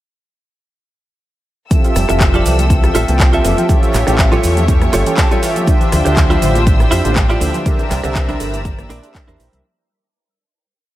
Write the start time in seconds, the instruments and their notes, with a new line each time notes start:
1.70 synth arpeggio sound E3, analog polysynth C4 F4 G4 A4 E5, string section A4 G5 E6, kick, closed hi-hat, cabasa, shaker
1.84 synth arpeggio sound F3, closed hi-hat, high bongo, cabasa, shaker
1.95 fingered electric bass F1, synth arpeggio sound G3, cross-stick, open hi-hat, cabasa, shaker
2.08 fingered electric bass F1, synth arpeggio sound E3, analog polysynth C4 F4 G4 A4 E5, muted clean electric guitar stroke, closed hi-hat, cabasa, shaker
2.20 synth arpeggio sound F3, muted clean electric guitar stroke, kick, clap, closed hi-hat, high bongo, cabasa, shaker
2.34 synth arpeggio sound G3, clean electric guitar F4 G4 A4 D5, closed hi-hat, low conga, cabasa, shaker
2.45 fingered electric bass C2, synth arpeggio sound E3, analog polysynth C4 F4 G4 A4 E5, open hi-hat, high bongo, cabasa, shaker
2.59 synth arpeggio sound F3, closed hi-hat, high conga, cabasa, shaker
2.70 synth arpeggio sound E3, analog polysynth C4 F4 G4 A4 E5, kick, closed hi-hat, cabasa, shaker
2.83 synth arpeggio sound F3, cross-stick, closed hi-hat, high bongo, cabasa, shaker
2.95 fingered electric bass A1, synth arpeggio sound G3, clean electric guitar F4 G4 A4 E5, open hi-hat, cabasa, shaker
3.08 fingered electric bass C2, synth arpeggio sound E3, analog polysynth C4 F4 G4 A4 G5, closed hi-hat, high bongo, high conga, cabasa, shaker
3.20 synth arpeggio sound F3, kick, clap, closed hi-hat, cabasa, shaker
3.33 synth arpeggio sound G3, analog polysynth C4 F4 G4 A4 E5, clean electric guitar F4 G4 A4 E5, closed hi-hat, cabasa, shaker
3.44 fingered electric bass F1, synth arpeggio sound E3, open hi-hat, high bongo, high conga, cabasa, shaker
3.57 synth arpeggio sound F3, closed hi-hat, low conga, cabasa, shaker
3.68 synth arpeggio sound E3, analog polysynth C#4 F4 G4 A4 E5, string section C#5, kick, closed hi-hat, high bongo, cabasa, shaker
3.82 synth arpeggio sound F3, closed hi-hat, cabasa, shaker
3.93 fingered electric bass A1, synth arpeggio sound G3, cross-stick, clap, open hi-hat, cabasa, shaker
4.07 fingered electric bass A1, synth arpeggio sound E3, analog polysynth C#4 F4 G4 A4 E5, muted clean electric guitar stroke, closed hi-hat, high bongo, cabasa, shaker
4.18 synth arpeggio sound F3, muted clean electric guitar stroke, kick, clap, closed hi-hat, cabasa, shaker
4.32 synth arpeggio sound G3, clean electric guitar F4 G4 A4 C#5, closed hi-hat, high bongo, low conga, cabasa, shaker
4.43 fingered electric bass E2, synth arpeggio sound E3, analog polysynth C#4 F4 G4 A4 E5, open hi-hat, cabasa, shaker
4.56 synth arpeggio sound F3, closed hi-hat, high conga, cabasa, shaker
4.68 synth arpeggio sound E3, analog polysynth C#4 F4 G4 A4 E5, kick, closed hi-hat, high bongo, cabasa, shaker
4.81 synth arpeggio sound F3, cross-stick, closed hi-hat, high conga, cabasa, shaker
4.93 fingered electric bass G1, synth arpeggio sound G3, clean electric guitar F4 G4 A4 C#5, open hi-hat, high bongo, high conga, cabasa, shaker
5.06 synth arpeggio sound E3, analog polysynth C#4 F4 G4 A4 G5, closed hi-hat, cabasa, shaker
5.17 synth arpeggio sound F3, clean electric guitar A5, kick, clap, open hi-hat, cabasa, shaker
5.31 synth arpeggio sound G3, analog polysynth C#4 F4 G4 A4 E5, clean electric guitar F4 G4 A4 C#5, closed hi-hat, high bongo, cabasa, shaker
5.42 synth arpeggio sound E3, clean electric guitar F5, open hi-hat, cabasa, shaker
5.56 synth arpeggio sound F3, closed hi-hat, high bongo, high conga, low conga, cabasa, shaker
5.67 synth arpeggio sound D3, analog polysynth D4 F4 G4 C5 E5, string section C5 E6, kick, closed hi-hat, cabasa, shaker
5.81 synth arpeggio sound E3, closed hi-hat, cabasa, shaker
5.92 fingered electric bass D2, synth arpeggio sound F3, cross-stick, open hi-hat, high bongo, cabasa, shaker
6.05 fingered electric bass D2, synth arpeggio sound D3, analog polysynth D4 F4 G4 C5 E5, muted clean electric guitar stroke, closed hi-hat, cabasa, shaker
6.17 synth arpeggio sound E3, muted clean electric guitar stroke, kick, clap, closed hi-hat, high bongo, cabasa, shaker
6.30 synth arpeggio sound F3, clean electric guitar E4 F4 G4 C5, closed hi-hat, low conga, cabasa, shaker
6.42 fingered electric bass A1, synth arpeggio sound D3, analog polysynth D4 F4 G4 C5 E5, open hi-hat, cabasa, shaker
6.55 synth arpeggio sound E3, closed hi-hat, high bongo, high conga, cabasa, shaker
6.66 synth arpeggio sound D3, analog polysynth F3 D4 G4 C5 E5, kick, closed hi-hat, cabasa, shaker
6.80 synth arpeggio sound E3, cross-stick, closed hi-hat, high bongo, cabasa, shaker
6.91 fingered electric bass F2, synth arpeggio sound F3, clean electric guitar E4 F4 G4 C5, open hi-hat, cabasa, shaker
7.04 fingered electric bass A1, synth arpeggio sound D3, analog polysynth D4 F4 G4 C5 G5, closed hi-hat, high conga, cabasa, shaker
7.16 synth arpeggio sound E3, kick, clap, closed hi-hat, high bongo, cabasa, shaker
7.29 synth arpeggio sound F3, analog polysynth F3 D4 G4 C5 E5, clean electric guitar E4 F4 G4 D5, closed hi-hat, cabasa, shaker
7.40 fingered electric bass D2, synth arpeggio sound D3, open hi-hat, high bongo, high conga, cabasa, shaker
7.54 synth arpeggio sound E3, closed hi-hat, low conga, cabasa, shaker
7.65 synth arpeggio sound D3, analog polysynth D4 G4 A#4 C5 E5, string section D5 A#5 E6, kick, closed hi-hat, cabasa, shaker
7.79 synth arpeggio sound E3, closed hi-hat, high bongo, cabasa, shaker
7.90 fingered electric bass C2, synth arpeggio sound G3, cross-stick, clap, open hi-hat, cabasa, shaker
8.03 fingered electric bass C2, synth arpeggio sound D3, analog polysynth D4 G4 A#4 C5 E5, muted clean electric guitar stroke, closed hi-hat, high bongo, cabasa, shaker
8.15 synth arpeggio sound E3, muted clean electric guitar stroke, kick, clap, closed hi-hat, cabasa, shaker
8.28 synth arpeggio sound G3, clean electric guitar D4 E4 A#4 C5, closed hi-hat, low conga, cabasa, shaker
8.40 fingered electric bass G1, synth arpeggio sound D3, analog polysynth D4 G4 A#4 C5 E5, open hi-hat, high bongo, cabasa, shaker
8.53 synth arpeggio sound E3, closed hi-hat, high conga, cabasa, shaker
8.64 synth arpeggio sound D3, analog polysynth D4 G4 A#4 E5, kick, closed hi-hat, high bongo, cabasa, shaker
8.78 synth arpeggio sound E3, cross-stick, closed hi-hat, high conga, cabasa, shaker
8.89 fingered electric bass A#1, synth arpeggio sound C4, clean electric guitar D4 E4 A#4 D5, open hi-hat, high conga, cabasa, shaker
9.02 synth arpeggio sound D4, analog polysynth D4 G4 A#4 C5 E5, closed hi-hat, high bongo, cabasa, shaker
9.14 synth arpeggio sound D4, kick, clap, open hi-hat, cabasa, shaker
9.27 fingered electric bass E2, analog polysynth D4 G4 A#4 C5 E5, synth arpeggio sound D4, clean electric guitar D4 E4 A#4 C5, closed hi-hat, high bongo, cabasa, shaker
9.39 fingered electric bass A#1, synth arpeggio sound E3, open hi-hat, cabasa, shaker
9.52 fingered electric bass C2, synth arpeggio sound G3, closed hi-hat, high conga, low conga, cabasa, shaker